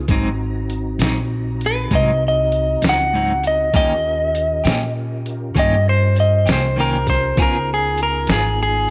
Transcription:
0.08 0.97 G#1 medium
0.08 0.27 G#2 medium
0.08 0.28 F#3 medium
0.08 3.70 C4 medium
0.08 0.28 C4 medium
0.08 3.70 D#4 medium
0.08 0.28 D#4 medium
0.08 3.70 F#4 medium
0.08 3.70 A#5 medium
0.08 kick medium
0.08 closed hi-hat medium
0.70 closed hi-hat medium
0.99 1.88 A#1 medium
0.99 1.19 C4 soft
0.99 1.18 D#4 medium
0.99 snare medium
0.99 closed hi-hat medium
1.04 1.20 F#3 soft
1.61 closed hi-hat soft
1.66 1.93 B4 medium
1.91 2.79 C2 medium
1.91 2.09 G#2 medium
1.91 2.10 F#3 medium
1.91 2.10 C4 medium
1.91 2.10 D#4 medium
1.91 kick medium
1.91 closed hi-hat medium
1.95 2.23 D#5 medium
2.28 2.84 D#5 medium
2.52 closed hi-hat soft
2.82 3.71 C#2 medium
2.82 3.02 F#3 soft
2.82 3.01 C4 soft
2.82 3.00 D#4 soft
2.82 snare loud
2.82 closed hi-hat medium
2.89 3.45 F#5 medium
3.13 3.31 G#2 soft
3.13 3.32 F#3 soft
3.13 3.32 C4 medium
3.13 3.32 D#4 medium
3.44 3.75 D#5 medium
3.44 closed hi-hat medium
3.73 4.62 D#2 medium
3.73 3.92 D#3 medium
3.73 3.92 A#3 medium
3.73 7.34 C#4 medium
3.73 3.92 C#4 medium
3.73 7.33 F4 medium
3.73 7.34 G4 medium
3.73 3.93 G4 medium
3.73 7.34 A#4 medium
3.73 4.93 D#5 medium
3.73 kick loud
3.73 closed hi-hat medium
4.35 closed hi-hat medium
4.64 5.53 A#2 medium
4.64 4.84 A#3 soft
4.64 4.83 C#4 soft
4.64 4.82 G4 medium
4.64 snare loud
4.64 closed hi-hat medium
5.26 closed hi-hat soft
5.55 6.44 G2 medium
5.55 5.73 D#3 medium
5.55 5.74 A#3 medium
5.55 5.74 C#4 medium
5.55 5.75 G4 medium
5.55 kick medium
5.55 closed hi-hat medium
5.59 5.87 D#5 medium
5.89 6.17 C5 medium
6.16 6.48 D#5 medium
6.16 closed hi-hat soft
6.46 7.35 C2 medium
6.46 6.66 A#3 soft
6.46 6.65 C#4 soft
6.46 6.64 G4 soft
6.46 snare loud
6.46 closed hi-hat medium
6.52 6.79 C5 medium
6.76 6.95 D#3 medium
6.76 6.96 A#3 medium
6.76 6.96 C#4 medium
6.76 6.97 G4 medium
6.80 7.08 A#4 medium
7.07 7.38 C5 medium
7.07 kick medium
7.07 snare soft
7.07 closed hi-hat medium
7.34 8.26 C#2 medium
7.34 7.56 C#3 medium
7.34 8.90 B3 medium
7.34 8.90 D#4 medium
7.34 8.90 F4 medium
7.34 8.90 G#4 medium
7.34 kick loud
7.34 closed hi-hat medium
7.38 7.56 B3 medium
7.38 7.56 F4 medium
7.38 7.57 G#4 medium
7.42 7.70 A#4 medium
7.74 8.00 G#4 medium
7.98 closed hi-hat medium
8.03 8.30 A#4 medium
8.27 8.90 G#1 medium
8.27 8.48 B3 soft
8.27 8.48 F4 medium
8.27 8.47 G#4 soft
8.27 snare loud
8.27 closed hi-hat medium
8.32 8.60 G#4 medium
8.63 8.90 G#4 medium

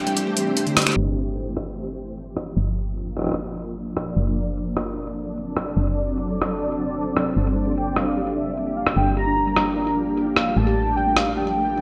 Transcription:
0.00 0.97 E3 medium
0.00 0.97 A3 medium
0.00 2.16 C4 loud
0.00 4.17 G4 medium
0.00 2.07 C5 medium
0.00 0.53 G5 loud
0.07 0.15 G3 loud
0.07 closed hi-hat medium
0.17 0.26 G3 medium
0.17 closed hi-hat medium
0.27 0.33 A3 medium
0.37 0.43 G3 medium
0.37 closed hi-hat medium
0.47 0.53 D4 medium
0.57 0.66 D4 loud
0.57 closed hi-hat medium
0.67 0.70 D3 loud
0.67 closed hi-hat soft
0.77 0.80 G3 medium
0.77 cross-stick loud
0.77 closed hi-hat medium
0.82 closed hi-hat medium
0.87 0.96 A3 medium
0.87 finger snap medium
0.87 closed hi-hat medium
0.92 closed hi-hat soft
0.96 2.55 G1 medium
0.96 4.17 F3 medium
1.30 4.17 A#3 medium
1.57 11.73 D4 medium
1.57 cross-stick loud
1.92 11.53 D5 medium
2.37 cross-stick loud
2.57 4.15 G1 medium
3.17 cross-stick soft
3.19 cross-stick medium
3.22 cross-stick medium
3.24 cross-stick medium
3.27 cross-stick medium
3.29 cross-stick medium
3.32 cross-stick medium
3.34 cross-stick loud
3.97 cross-stick loud
4.16 5.75 F#1 medium
4.16 7.37 F#3 medium
4.31 8.03 C4 medium
4.43 8.65 A4 medium
4.77 cross-stick loud
5.57 cross-stick loud
5.77 7.35 F#1 medium
6.42 cross-stick loud
7.17 cross-stick loud
7.36 8.95 G1 medium
7.36 10.57 F3 medium
7.36 7.46 D4 medium
7.43 7.56 G3 medium
7.43 10.57 A#3 medium
7.57 7.63 A#3 medium
7.67 7.73 G4 loud
7.77 7.83 D4 medium
7.77 7.98 G5 medium
7.87 7.96 D4 medium
7.96 8.06 G3 medium
7.96 11.81 G4 medium
7.96 8.36 F5 medium
7.96 cross-stick loud
8.07 8.13 A#3 medium
8.17 8.23 G4 loud
8.27 8.33 D4 medium
8.37 8.46 D4 medium
8.37 8.74 E5 medium
8.47 8.56 G3 medium
8.57 8.63 A#3 medium
8.67 8.73 G4 loud
8.77 8.83 D4 medium
8.77 8.86 F5 medium
8.87 8.96 D4 medium
8.87 cross-stick loud
8.97 10.55 G1 medium
8.97 9.06 G3 medium
8.97 9.15 G5 loud
9.07 9.13 A#3 medium
9.17 9.23 G4 loud
9.17 9.93 A#5 loud
9.27 9.33 D4 medium
9.37 9.46 D4 medium
9.47 9.56 G3 medium
9.56 9.63 A#3 medium
9.56 cross-stick loud
9.67 9.73 G4 loud
9.77 9.83 D4 medium
9.87 9.96 D4 medium
9.97 10.06 G3 medium
10.07 10.13 A#3 medium
10.17 10.23 G4 loud
10.27 10.33 D4 medium
10.36 10.46 D4 medium
10.36 10.58 F5 medium
10.36 cross-stick loud
10.47 10.56 G3 medium
10.56 11.81 A1 medium
10.56 11.81 E3 medium
10.56 10.63 A3 medium
10.56 10.96 A5 loud
10.67 10.73 G4 loud
10.77 10.83 D4 medium
10.87 10.96 D4 medium
10.92 11.81 A3 medium
10.96 11.06 G3 medium
10.96 11.18 G5 loud
11.07 11.13 A3 medium
11.16 11.38 F5 medium
11.16 cross-stick loud
11.23 11.81 C4 medium
11.27 11.33 D4 medium
11.37 11.46 D4 medium
11.37 11.81 G5 loud
11.47 11.56 G3 medium
11.57 11.63 A3 medium
11.67 11.73 G4 loud
11.77 11.81 D4 medium

